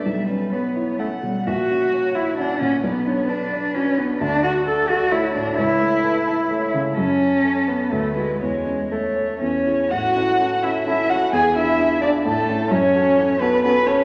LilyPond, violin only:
\new Staff \with { instrumentName = "Violin" } { \time 3/4 \key b \minor \tempo 4 = 130 e''8 b'8 b'8 cis''8 fis''4 | e''4 cis''4 fis''4 | d''8 cis''8 b'2 | \key a \major a'4 d''4 cis''4~ |
cis''4 b'8 a'8 cis''4 | a'2 b'4 | cis''4 cis''4 cis''4 | fis''4. e''8 e''8 fis''8 |
gis''8 e''4 d''8 a'4 | cis''4. b'8 b'8 cis''8 | }